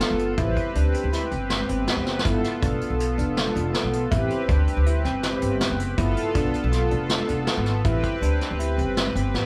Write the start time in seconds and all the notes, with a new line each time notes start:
Already playing: B3 F4 A4
0.00 B3, snare, closed hi-hat
0.10 G1
0.19 closed hi-hat
0.36 A1 C4 E4 G4 B4, kick, closed hi-hat
0.57 kick, closed hi-hat
0.75 D2 D4, closed hi-hat
0.94 closed hi-hat
1.04 D2
1.13 E4, snare, closed hi-hat
1.31 G1 C4, closed hi-hat
1.50 snare, closed hi-hat
1.69 G1 C4, closed hi-hat
1.87 B3, snare, closed hi-hat
1.97 F#1
2.06 snare
2.19 snare
2.24 G1 B3 E4 F4 A4, kick, closed hi-hat
2.44 snare, closed hi-hat
2.62 B1 D4, kick, closed hi-hat
2.81 closed hi-hat
2.90 B1
3.00 F4, closed hi-hat
3.18 F1 D4, closed hi-hat
3.37 snare, closed hi-hat
3.55 F1 D4, closed hi-hat
3.74 B3, snare, closed hi-hat
3.84 B1
3.93 closed hi-hat
4.11 A1 C4 E4 G4 B4, kick, closed hi-hat
4.30 closed hi-hat
4.48 D2 D4, kick, closed hi-hat
4.67 closed hi-hat
4.77 D2
4.86 E4, closed hi-hat
5.05 G1 C4, snare, closed hi-hat
5.23 snare, closed hi-hat
5.42 G1 C4, closed hi-hat
5.61 B3, snare, closed hi-hat
5.70 F#1
5.80 closed hi-hat
5.97 G1 B3 E4 F4 A4, kick, closed hi-hat
6.17 closed hi-hat
6.35 B1 D4, kick, closed hi-hat
6.54 closed hi-hat
6.64 B1
6.72 F4, snare, closed hi-hat
6.91 F1 D4, closed hi-hat
7.09 snare, closed hi-hat
7.28 F1 D4, closed hi-hat
7.47 B3, snare, closed hi-hat
7.57 G#1
7.66 snare, closed hi-hat
7.84 A1 C4 E4 G4 B4, kick, closed hi-hat
8.04 kick, closed hi-hat
8.22 D2 D4, closed hi-hat
8.41 snare, closed hi-hat
8.51 D2
8.59 E4, closed hi-hat
8.78 G1 C4, closed hi-hat
8.97 snare, closed hi-hat
9.15 G1 C4, closed hi-hat
9.34 A1 B3, snare